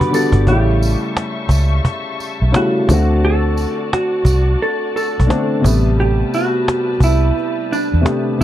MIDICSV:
0, 0, Header, 1, 7, 480
1, 0, Start_track
1, 0, Tempo, 689655
1, 328, Time_signature, 4, 2, 24, 8
1, 5871, End_track
2, 0, Start_track
2, 0, Title_t, "String section"
2, 0, Program_c, 0, 48
2, 0, Note_on_c, 0, 55, 77
2, 0, Note_on_c, 0, 78, 76
2, 0, Note_on_c, 0, 83, 65
2, 0, Note_on_c, 0, 86, 87
2, 307, Note_off_c, 0, 86, 0
2, 308, Note_off_c, 0, 83, 0
2, 310, Note_off_c, 0, 78, 0
2, 325, Note_on_c, 0, 81, 71
2, 328, Note_on_c, 0, 85, 92
2, 329, Note_on_c, 0, 76, 69
2, 1980, Note_off_c, 0, 55, 0
2, 1991, Note_off_c, 0, 76, 0
2, 1991, Note_off_c, 0, 85, 0
2, 2016, Note_on_c, 0, 66, 80
2, 2016, Note_on_c, 0, 74, 74
2, 3899, Note_off_c, 0, 81, 0
2, 3912, Note_off_c, 0, 74, 0
2, 3913, Note_off_c, 0, 66, 0
2, 3925, Note_on_c, 0, 55, 81
2, 3925, Note_on_c, 0, 71, 75
2, 3929, Note_on_c, 0, 81, 75
2, 5871, Note_off_c, 0, 55, 0
2, 5871, Note_off_c, 0, 71, 0
2, 5871, Note_off_c, 0, 81, 0
2, 5871, End_track
3, 0, Start_track
3, 0, Title_t, "Hollow-body jazz guitar"
3, 0, Program_c, 1, 26
3, 0, Note_on_c, 1, 71, 88
3, 101, Note_off_c, 1, 71, 0
3, 101, Note_on_c, 1, 69, 89
3, 318, Note_off_c, 1, 69, 0
3, 336, Note_on_c, 1, 67, 95
3, 1275, Note_off_c, 1, 67, 0
3, 1275, Note_on_c, 1, 66, 95
3, 1780, Note_off_c, 1, 66, 0
3, 1782, Note_on_c, 1, 66, 91
3, 2227, Note_off_c, 1, 66, 0
3, 2259, Note_on_c, 1, 69, 95
3, 2735, Note_off_c, 1, 69, 0
3, 2738, Note_on_c, 1, 66, 78
3, 3216, Note_off_c, 1, 66, 0
3, 3218, Note_on_c, 1, 69, 96
3, 3445, Note_off_c, 1, 69, 0
3, 3453, Note_on_c, 1, 69, 95
3, 4142, Note_off_c, 1, 69, 0
3, 4176, Note_on_c, 1, 67, 90
3, 4413, Note_off_c, 1, 67, 0
3, 4416, Note_on_c, 1, 66, 80
3, 4895, Note_off_c, 1, 66, 0
3, 4898, Note_on_c, 1, 64, 73
3, 5376, Note_on_c, 1, 62, 84
3, 5825, Note_off_c, 1, 64, 0
3, 5866, Note_off_c, 1, 62, 0
3, 5871, End_track
4, 0, Start_track
4, 0, Title_t, "Felt piano"
4, 0, Program_c, 2, 0
4, 0, Control_c, 2, 64, 127
4, 0, Note_on_c, 2, 50, 73
4, 0, Note_on_c, 2, 55, 66
4, 0, Note_on_c, 2, 59, 73
4, 0, Note_on_c, 2, 66, 85
4, 73, Note_off_c, 2, 50, 0
4, 73, Note_on_c, 2, 50, 77
4, 74, Note_off_c, 2, 55, 0
4, 84, Note_off_c, 2, 59, 0
4, 85, Note_on_c, 2, 55, 70
4, 91, Note_off_c, 2, 66, 0
4, 94, Note_on_c, 2, 59, 71
4, 108, Note_on_c, 2, 66, 75
4, 309, Note_off_c, 2, 50, 0
4, 315, Note_off_c, 2, 55, 0
4, 319, Note_off_c, 2, 59, 0
4, 326, Note_off_c, 2, 66, 0
4, 328, Note_on_c, 2, 49, 79
4, 338, Control_c, 2, 64, 0
4, 341, Note_on_c, 2, 55, 75
4, 352, Note_on_c, 2, 57, 73
4, 362, Note_on_c, 2, 64, 89
4, 468, Control_c, 2, 64, 127
4, 1243, Note_off_c, 2, 49, 0
4, 1249, Note_off_c, 2, 55, 0
4, 1255, Note_off_c, 2, 57, 0
4, 1260, Note_off_c, 2, 64, 0
4, 1755, Note_on_c, 2, 49, 78
4, 1767, Note_on_c, 2, 55, 66
4, 1777, Note_on_c, 2, 57, 71
4, 1787, Note_on_c, 2, 64, 82
4, 1990, Note_off_c, 2, 49, 0
4, 1996, Note_off_c, 2, 55, 0
4, 2001, Note_off_c, 2, 57, 0
4, 2005, Note_on_c, 2, 50, 91
4, 2006, Note_off_c, 2, 64, 0
4, 2015, Note_on_c, 2, 57, 72
4, 2016, Control_c, 2, 64, 0
4, 2027, Note_on_c, 2, 60, 69
4, 2038, Note_on_c, 2, 66, 101
4, 2154, Control_c, 2, 64, 127
4, 2921, Note_off_c, 2, 50, 0
4, 2926, Note_off_c, 2, 57, 0
4, 2932, Note_off_c, 2, 60, 0
4, 2938, Note_off_c, 2, 66, 0
4, 3667, Note_on_c, 2, 50, 74
4, 3676, Note_on_c, 2, 57, 71
4, 3687, Note_on_c, 2, 60, 73
4, 3698, Note_on_c, 2, 62, 89
4, 3904, Note_on_c, 2, 48, 78
4, 3905, Note_off_c, 2, 57, 0
4, 3906, Note_off_c, 2, 50, 0
4, 3916, Note_off_c, 2, 60, 0
4, 3916, Note_on_c, 2, 57, 75
4, 3921, Note_off_c, 2, 62, 0
4, 3928, Note_on_c, 2, 59, 79
4, 3937, Control_c, 2, 64, 0
4, 3938, Note_on_c, 2, 55, 85
4, 4053, Control_c, 2, 64, 127
4, 4830, Note_off_c, 2, 48, 0
4, 4836, Note_off_c, 2, 57, 0
4, 4842, Note_off_c, 2, 59, 0
4, 4847, Note_off_c, 2, 55, 0
4, 5576, Note_on_c, 2, 48, 83
4, 5586, Note_on_c, 2, 57, 81
4, 5600, Note_on_c, 2, 59, 77
4, 5609, Note_on_c, 2, 67, 90
4, 5821, Note_off_c, 2, 48, 0
4, 5825, Note_off_c, 2, 57, 0
4, 5832, Note_off_c, 2, 59, 0
4, 5833, Note_on_c, 2, 48, 80
4, 5837, Note_off_c, 2, 67, 0
4, 5846, Note_on_c, 2, 57, 77
4, 5871, Note_off_c, 2, 48, 0
4, 5871, Note_off_c, 2, 57, 0
4, 5871, End_track
5, 0, Start_track
5, 0, Title_t, "Fingered electric bass"
5, 0, Program_c, 3, 33
5, 227, Note_on_c, 3, 31, 94
5, 307, Note_off_c, 3, 31, 0
5, 328, Note_on_c, 3, 33, 95
5, 655, Note_off_c, 3, 33, 0
5, 1038, Note_on_c, 3, 37, 88
5, 1243, Note_off_c, 3, 37, 0
5, 1683, Note_on_c, 3, 35, 101
5, 1756, Note_off_c, 3, 35, 0
5, 2012, Note_on_c, 3, 38, 90
5, 2539, Note_off_c, 3, 38, 0
5, 2958, Note_on_c, 3, 36, 99
5, 3163, Note_off_c, 3, 36, 0
5, 3620, Note_on_c, 3, 35, 93
5, 3685, Note_off_c, 3, 35, 0
5, 3930, Note_on_c, 3, 33, 99
5, 4332, Note_off_c, 3, 33, 0
5, 4875, Note_on_c, 3, 36, 100
5, 5081, Note_off_c, 3, 36, 0
5, 5523, Note_on_c, 3, 40, 94
5, 5596, Note_off_c, 3, 40, 0
5, 5871, End_track
6, 0, Start_track
6, 0, Title_t, "Cajon"
6, 6, Note_on_c, 9, 36, 90
6, 76, Note_off_c, 9, 36, 0
6, 225, Note_on_c, 9, 36, 97
6, 295, Note_off_c, 9, 36, 0
6, 326, Note_on_c, 9, 36, 104
6, 396, Note_off_c, 9, 36, 0
6, 812, Note_on_c, 9, 38, 107
6, 881, Note_off_c, 9, 38, 0
6, 1036, Note_on_c, 9, 36, 88
6, 1105, Note_off_c, 9, 36, 0
6, 1285, Note_on_c, 9, 36, 103
6, 1355, Note_off_c, 9, 36, 0
6, 1533, Note_on_c, 9, 38, 36
6, 1603, Note_off_c, 9, 38, 0
6, 1769, Note_on_c, 9, 38, 112
6, 1839, Note_off_c, 9, 38, 0
6, 2009, Note_on_c, 9, 36, 116
6, 2079, Note_off_c, 9, 36, 0
6, 2259, Note_on_c, 9, 38, 39
6, 2328, Note_off_c, 9, 38, 0
6, 2737, Note_on_c, 9, 38, 103
6, 2806, Note_off_c, 9, 38, 0
6, 2957, Note_on_c, 9, 36, 90
6, 3026, Note_off_c, 9, 36, 0
6, 3219, Note_on_c, 9, 38, 52
6, 3288, Note_off_c, 9, 38, 0
6, 3449, Note_on_c, 9, 38, 34
6, 3519, Note_off_c, 9, 38, 0
6, 3617, Note_on_c, 9, 36, 96
6, 3686, Note_off_c, 9, 36, 0
6, 3691, Note_on_c, 9, 38, 106
6, 3761, Note_off_c, 9, 38, 0
6, 3928, Note_on_c, 9, 36, 100
6, 3998, Note_off_c, 9, 36, 0
6, 4174, Note_on_c, 9, 38, 37
6, 4244, Note_off_c, 9, 38, 0
6, 4415, Note_on_c, 9, 38, 36
6, 4485, Note_off_c, 9, 38, 0
6, 4651, Note_on_c, 9, 38, 106
6, 4721, Note_off_c, 9, 38, 0
6, 4821, Note_on_c, 9, 38, 23
6, 4874, Note_on_c, 9, 36, 85
6, 4891, Note_off_c, 9, 38, 0
6, 4944, Note_off_c, 9, 36, 0
6, 5135, Note_on_c, 9, 38, 46
6, 5205, Note_off_c, 9, 38, 0
6, 5372, Note_on_c, 9, 38, 35
6, 5441, Note_off_c, 9, 38, 0
6, 5520, Note_on_c, 9, 38, 29
6, 5590, Note_off_c, 9, 38, 0
6, 5608, Note_on_c, 9, 38, 103
6, 5678, Note_off_c, 9, 38, 0
6, 5848, Note_on_c, 9, 38, 38
6, 5871, Note_off_c, 9, 38, 0
6, 5871, End_track
7, 0, Start_track
7, 0, Title_t, "Drums"
7, 97, Note_on_c, 9, 54, 70
7, 166, Note_off_c, 9, 54, 0
7, 574, Note_on_c, 9, 54, 56
7, 643, Note_off_c, 9, 54, 0
7, 1050, Note_on_c, 9, 54, 61
7, 1120, Note_off_c, 9, 54, 0
7, 1533, Note_on_c, 9, 54, 40
7, 1603, Note_off_c, 9, 54, 0
7, 2017, Note_on_c, 9, 54, 68
7, 2086, Note_off_c, 9, 54, 0
7, 2488, Note_on_c, 9, 54, 51
7, 2558, Note_off_c, 9, 54, 0
7, 2967, Note_on_c, 9, 54, 66
7, 3037, Note_off_c, 9, 54, 0
7, 3460, Note_on_c, 9, 54, 40
7, 3529, Note_off_c, 9, 54, 0
7, 3937, Note_on_c, 9, 54, 77
7, 4007, Note_off_c, 9, 54, 0
7, 4410, Note_on_c, 9, 54, 50
7, 4480, Note_off_c, 9, 54, 0
7, 4891, Note_on_c, 9, 54, 65
7, 4961, Note_off_c, 9, 54, 0
7, 5379, Note_on_c, 9, 54, 39
7, 5449, Note_off_c, 9, 54, 0
7, 5871, End_track
0, 0, End_of_file